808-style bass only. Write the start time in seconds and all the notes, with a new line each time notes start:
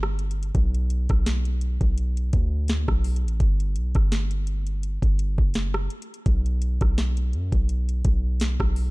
Already playing: G1
0.55 B1
1.10 B1
1.81 B1
2.33 D2
2.88 B1
3.24 A1
3.40 G1
3.76 B1
3.95 G1
5.03 G1
5.38 F#1
6.26 B1
6.81 B1
7.34 F#2
7.52 B1
8.05 B1
8.60 B1